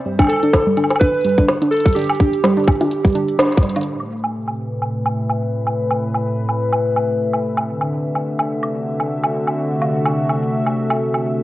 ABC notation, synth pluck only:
X:1
M:4/4
L:1/16
Q:"Swing 16ths" 1/4=126
K:Ador
V:1 name="Synth pluck"
G, D z D z G, D z D z G, D z D z G, | D z D z G, D z D z G, D z D z G, D | z16 | z16 |
z16 | z16 |]